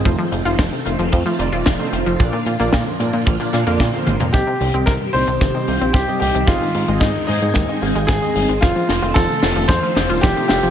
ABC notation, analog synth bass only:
X:1
M:4/4
L:1/16
Q:1/4=112
K:Cm
V:1 name="Analog synth bass" clef=bass
F,,, z F,,, F,,, F,,, z F,,, F,,, F,, z F,,, E,,, F,,, z F,,, F,,, | B,,, z B,, B,,, B,, z B,, B,, B,,, z B,, F,, B,, z A,,, F,, | C,, z C,, C,, C,, z C,, C,, G,,, z C,, B,,, C,, z C,, C,, | A,,, z A,, A,,, A,, z A,, A,, E,, z A,,, A,,, A,,, z A,,, A,,, |
F,,, z F,,, F,,, F,,, z F,,, F,,, F,, z F,,, E,,, F,,, z F,,, F,,, |]